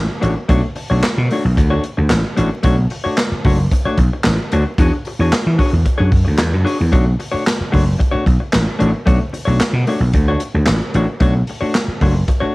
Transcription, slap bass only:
0, 0, Header, 1, 3, 480
1, 0, Start_track
1, 0, Tempo, 535714
1, 444, Time_signature, 4, 2, 24, 8
1, 11244, End_track
2, 0, Start_track
2, 0, Title_t, "Slap bass"
2, 0, Program_c, 0, 36
2, 205, Note_on_c, 0, 33, 89
2, 298, Note_off_c, 0, 33, 0
2, 441, Note_on_c, 0, 35, 93
2, 536, Note_off_c, 0, 35, 0
2, 812, Note_on_c, 0, 35, 84
2, 902, Note_off_c, 0, 35, 0
2, 1054, Note_on_c, 0, 47, 96
2, 1144, Note_off_c, 0, 47, 0
2, 1297, Note_on_c, 0, 35, 88
2, 1386, Note_off_c, 0, 35, 0
2, 1409, Note_on_c, 0, 38, 102
2, 1595, Note_off_c, 0, 38, 0
2, 1772, Note_on_c, 0, 38, 85
2, 1863, Note_off_c, 0, 38, 0
2, 1891, Note_on_c, 0, 33, 95
2, 1983, Note_off_c, 0, 33, 0
2, 2135, Note_on_c, 0, 33, 105
2, 2225, Note_off_c, 0, 33, 0
2, 2369, Note_on_c, 0, 35, 107
2, 2555, Note_off_c, 0, 35, 0
2, 3092, Note_on_c, 0, 30, 73
2, 3277, Note_off_c, 0, 30, 0
2, 3566, Note_on_c, 0, 35, 77
2, 3660, Note_off_c, 0, 35, 0
2, 3818, Note_on_c, 0, 33, 88
2, 3908, Note_off_c, 0, 33, 0
2, 4056, Note_on_c, 0, 38, 107
2, 4146, Note_off_c, 0, 38, 0
2, 4288, Note_on_c, 0, 40, 107
2, 4381, Note_off_c, 0, 40, 0
2, 4653, Note_on_c, 0, 40, 80
2, 4744, Note_off_c, 0, 40, 0
2, 4897, Note_on_c, 0, 52, 85
2, 4986, Note_off_c, 0, 52, 0
2, 5134, Note_on_c, 0, 40, 89
2, 5224, Note_off_c, 0, 40, 0
2, 5375, Note_on_c, 0, 42, 87
2, 5465, Note_off_c, 0, 42, 0
2, 5486, Note_on_c, 0, 42, 78
2, 5579, Note_off_c, 0, 42, 0
2, 5621, Note_on_c, 0, 38, 93
2, 5749, Note_off_c, 0, 38, 0
2, 5749, Note_on_c, 0, 40, 83
2, 5858, Note_off_c, 0, 40, 0
2, 5858, Note_on_c, 0, 42, 97
2, 5946, Note_off_c, 0, 42, 0
2, 6097, Note_on_c, 0, 40, 81
2, 6186, Note_off_c, 0, 40, 0
2, 6207, Note_on_c, 0, 35, 95
2, 6392, Note_off_c, 0, 35, 0
2, 6932, Note_on_c, 0, 30, 87
2, 7115, Note_off_c, 0, 30, 0
2, 7406, Note_on_c, 0, 35, 86
2, 7498, Note_off_c, 0, 35, 0
2, 7660, Note_on_c, 0, 33, 79
2, 7747, Note_off_c, 0, 33, 0
2, 7894, Note_on_c, 0, 33, 83
2, 7983, Note_off_c, 0, 33, 0
2, 8127, Note_on_c, 0, 35, 102
2, 8218, Note_off_c, 0, 35, 0
2, 8486, Note_on_c, 0, 35, 78
2, 8578, Note_off_c, 0, 35, 0
2, 8719, Note_on_c, 0, 47, 97
2, 8813, Note_off_c, 0, 47, 0
2, 8962, Note_on_c, 0, 35, 76
2, 9055, Note_off_c, 0, 35, 0
2, 9086, Note_on_c, 0, 38, 95
2, 9271, Note_off_c, 0, 38, 0
2, 9447, Note_on_c, 0, 38, 88
2, 9538, Note_off_c, 0, 38, 0
2, 9573, Note_on_c, 0, 33, 88
2, 9662, Note_off_c, 0, 33, 0
2, 9806, Note_on_c, 0, 33, 108
2, 9897, Note_off_c, 0, 33, 0
2, 10043, Note_on_c, 0, 35, 100
2, 10228, Note_off_c, 0, 35, 0
2, 10765, Note_on_c, 0, 30, 77
2, 10950, Note_off_c, 0, 30, 0
2, 11244, End_track
3, 0, Start_track
3, 0, Title_t, "Muted slap bass strokes"
3, 928, Note_on_c, 9, 29, 48
3, 1017, Note_off_c, 9, 29, 0
3, 2739, Note_on_c, 9, 29, 43
3, 2828, Note_off_c, 9, 29, 0
3, 2972, Note_on_c, 9, 29, 53
3, 3062, Note_off_c, 9, 29, 0
3, 3453, Note_on_c, 9, 29, 53
3, 3543, Note_off_c, 9, 29, 0
3, 4776, Note_on_c, 9, 29, 47
3, 4865, Note_off_c, 9, 29, 0
3, 6575, Note_on_c, 9, 29, 43
3, 6665, Note_off_c, 9, 29, 0
3, 6814, Note_on_c, 9, 29, 49
3, 6903, Note_off_c, 9, 29, 0
3, 7299, Note_on_c, 9, 29, 52
3, 7389, Note_off_c, 9, 29, 0
3, 8609, Note_on_c, 9, 29, 52
3, 8698, Note_off_c, 9, 29, 0
3, 10409, Note_on_c, 9, 29, 46
3, 10499, Note_off_c, 9, 29, 0
3, 10645, Note_on_c, 9, 29, 49
3, 10735, Note_off_c, 9, 29, 0
3, 11129, Note_on_c, 9, 29, 53
3, 11219, Note_off_c, 9, 29, 0
3, 11244, End_track
0, 0, End_of_file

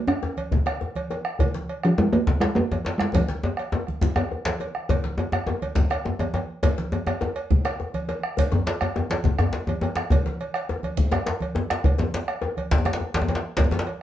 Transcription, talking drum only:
0, 0, Header, 1, 2, 480
1, 0, Start_track
1, 0, Tempo, 291262
1, 2299, Time_signature, 12, 3, 24, 8
1, 11413, Tempo, 289017
1, 23196, End_track
2, 0, Start_track
2, 0, Title_t, "Talking drum"
2, 0, Program_c, 0, 116
2, 124, Note_on_c, 0, 61, 83
2, 671, Note_off_c, 0, 61, 0
2, 3043, Note_on_c, 0, 53, 81
2, 3272, Note_on_c, 0, 56, 84
2, 3296, Note_off_c, 0, 53, 0
2, 3502, Note_on_c, 0, 58, 93
2, 3527, Note_off_c, 0, 56, 0
2, 3961, Note_on_c, 0, 56, 78
2, 3985, Note_off_c, 0, 58, 0
2, 4205, Note_on_c, 0, 58, 91
2, 4230, Note_off_c, 0, 56, 0
2, 4912, Note_on_c, 0, 56, 77
2, 4937, Note_off_c, 0, 58, 0
2, 5167, Note_off_c, 0, 56, 0
2, 5186, Note_on_c, 0, 53, 75
2, 5854, Note_off_c, 0, 53, 0
2, 23196, End_track
0, 0, End_of_file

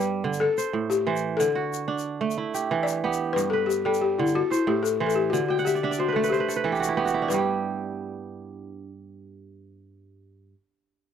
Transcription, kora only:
0, 0, Header, 1, 2, 480
1, 0, Start_track
1, 0, Tempo, 327690
1, 2043, Time_signature, 12, 3, 24, 8
1, 16312, End_track
2, 0, Start_track
2, 0, Title_t, "Kora"
2, 0, Program_c, 0, 46
2, 0, Note_on_c, 0, 43, 78
2, 0, Note_on_c, 0, 55, 78
2, 0, Note_on_c, 0, 57, 73
2, 0, Note_on_c, 0, 59, 75
2, 0, Note_on_c, 0, 67, 60
2, 0, Note_on_c, 0, 71, 62
2, 353, Note_on_c, 0, 50, 78
2, 389, Note_off_c, 0, 57, 0
2, 429, Note_off_c, 0, 55, 0
2, 600, Note_on_c, 0, 69, 69
2, 671, Note_off_c, 0, 43, 0
2, 671, Note_off_c, 0, 50, 0
2, 723, Note_off_c, 0, 67, 0
2, 844, Note_on_c, 0, 72, 62
2, 932, Note_off_c, 0, 59, 0
2, 932, Note_off_c, 0, 71, 0
2, 1074, Note_on_c, 0, 45, 72
2, 1561, Note_off_c, 0, 72, 0
2, 1561, Note_on_c, 0, 52, 74
2, 1567, Note_on_c, 0, 72, 60
2, 2047, Note_on_c, 0, 50, 80
2, 2117, Note_off_c, 0, 45, 0
2, 2117, Note_off_c, 0, 52, 0
2, 2275, Note_on_c, 0, 66, 68
2, 2530, Note_off_c, 0, 69, 0
2, 2750, Note_on_c, 0, 62, 81
2, 3234, Note_on_c, 0, 57, 77
2, 3307, Note_off_c, 0, 72, 0
2, 3480, Note_on_c, 0, 64, 64
2, 3561, Note_off_c, 0, 50, 0
2, 3725, Note_on_c, 0, 67, 63
2, 3813, Note_off_c, 0, 66, 0
2, 3969, Note_on_c, 0, 52, 81
2, 4449, Note_on_c, 0, 59, 78
2, 4450, Note_off_c, 0, 67, 0
2, 4456, Note_on_c, 0, 67, 62
2, 4924, Note_on_c, 0, 43, 75
2, 5004, Note_off_c, 0, 52, 0
2, 5174, Note_on_c, 0, 71, 66
2, 5210, Note_off_c, 0, 62, 0
2, 5649, Note_on_c, 0, 55, 80
2, 5776, Note_off_c, 0, 64, 0
2, 6143, Note_on_c, 0, 50, 80
2, 6160, Note_off_c, 0, 57, 0
2, 6205, Note_off_c, 0, 55, 0
2, 6376, Note_on_c, 0, 69, 66
2, 6445, Note_off_c, 0, 43, 0
2, 6445, Note_off_c, 0, 50, 0
2, 6525, Note_off_c, 0, 67, 0
2, 6609, Note_on_c, 0, 72, 65
2, 6696, Note_off_c, 0, 59, 0
2, 6696, Note_off_c, 0, 71, 0
2, 6841, Note_on_c, 0, 45, 78
2, 7327, Note_off_c, 0, 72, 0
2, 7329, Note_on_c, 0, 52, 77
2, 7332, Note_on_c, 0, 72, 64
2, 7808, Note_on_c, 0, 50, 82
2, 7884, Note_off_c, 0, 45, 0
2, 7884, Note_off_c, 0, 52, 0
2, 8058, Note_on_c, 0, 79, 67
2, 8185, Note_on_c, 0, 78, 74
2, 8302, Note_on_c, 0, 76, 71
2, 8306, Note_off_c, 0, 69, 0
2, 8424, Note_on_c, 0, 74, 66
2, 8536, Note_off_c, 0, 76, 0
2, 8542, Note_on_c, 0, 76, 64
2, 8551, Note_on_c, 0, 62, 80
2, 8651, Note_off_c, 0, 74, 0
2, 8657, Note_on_c, 0, 74, 65
2, 8775, Note_off_c, 0, 72, 0
2, 8781, Note_on_c, 0, 72, 65
2, 8911, Note_on_c, 0, 71, 67
2, 9022, Note_on_c, 0, 57, 76
2, 9022, Note_on_c, 0, 69, 68
2, 9129, Note_off_c, 0, 71, 0
2, 9135, Note_on_c, 0, 71, 70
2, 9223, Note_off_c, 0, 72, 0
2, 9260, Note_on_c, 0, 72, 64
2, 9322, Note_off_c, 0, 50, 0
2, 9368, Note_off_c, 0, 71, 0
2, 9374, Note_on_c, 0, 71, 71
2, 9423, Note_off_c, 0, 79, 0
2, 9493, Note_off_c, 0, 69, 0
2, 9499, Note_on_c, 0, 69, 64
2, 9598, Note_off_c, 0, 78, 0
2, 9608, Note_off_c, 0, 71, 0
2, 9614, Note_on_c, 0, 71, 68
2, 9702, Note_off_c, 0, 72, 0
2, 9726, Note_on_c, 0, 52, 77
2, 9727, Note_off_c, 0, 69, 0
2, 9733, Note_on_c, 0, 69, 67
2, 9843, Note_on_c, 0, 67, 69
2, 9959, Note_on_c, 0, 66, 68
2, 10056, Note_off_c, 0, 76, 0
2, 10084, Note_on_c, 0, 64, 69
2, 10205, Note_off_c, 0, 67, 0
2, 10210, Note_on_c, 0, 59, 73
2, 10210, Note_on_c, 0, 67, 70
2, 10280, Note_off_c, 0, 74, 0
2, 10298, Note_off_c, 0, 66, 0
2, 10329, Note_on_c, 0, 66, 67
2, 10454, Note_off_c, 0, 64, 0
2, 10460, Note_on_c, 0, 64, 70
2, 10570, Note_off_c, 0, 62, 0
2, 10576, Note_on_c, 0, 62, 66
2, 10693, Note_on_c, 0, 43, 67
2, 10745, Note_on_c, 0, 55, 68
2, 10759, Note_off_c, 0, 52, 0
2, 10781, Note_off_c, 0, 66, 0
2, 10803, Note_off_c, 0, 67, 0
2, 10809, Note_on_c, 0, 67, 63
2, 11414, Note_off_c, 0, 71, 0
2, 11663, Note_off_c, 0, 69, 0
2, 11947, Note_off_c, 0, 57, 0
2, 12756, Note_off_c, 0, 64, 0
2, 12940, Note_off_c, 0, 59, 0
2, 13036, Note_off_c, 0, 62, 0
2, 15421, Note_off_c, 0, 43, 0
2, 15473, Note_off_c, 0, 55, 0
2, 15537, Note_off_c, 0, 67, 0
2, 16312, End_track
0, 0, End_of_file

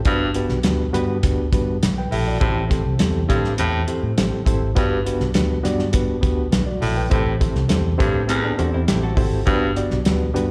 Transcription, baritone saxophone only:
0, 0, Header, 1, 2, 480
1, 0, Start_track
1, 0, Key_signature, 1, "major"
1, 0, Tempo, 588235
1, 47, Time_signature, 4, 2, 24, 8
1, 8575, End_track
2, 0, Start_track
2, 0, Title_t, "Baritone saxophone"
2, 0, Program_c, 0, 67
2, 50, Note_on_c, 0, 43, 101
2, 241, Note_off_c, 0, 43, 0
2, 1724, Note_on_c, 0, 45, 71
2, 1917, Note_off_c, 0, 45, 0
2, 1960, Note_on_c, 0, 45, 84
2, 2155, Note_off_c, 0, 45, 0
2, 2687, Note_on_c, 0, 43, 82
2, 2879, Note_off_c, 0, 43, 0
2, 2927, Note_on_c, 0, 45, 97
2, 3119, Note_off_c, 0, 45, 0
2, 3886, Note_on_c, 0, 43, 92
2, 4079, Note_off_c, 0, 43, 0
2, 5560, Note_on_c, 0, 45, 68
2, 5755, Note_off_c, 0, 45, 0
2, 5796, Note_on_c, 0, 45, 83
2, 5993, Note_off_c, 0, 45, 0
2, 6527, Note_on_c, 0, 43, 81
2, 6720, Note_off_c, 0, 43, 0
2, 6765, Note_on_c, 0, 40, 96
2, 6958, Note_off_c, 0, 40, 0
2, 7723, Note_on_c, 0, 43, 101
2, 7917, Note_off_c, 0, 43, 0
2, 8575, End_track
0, 0, End_of_file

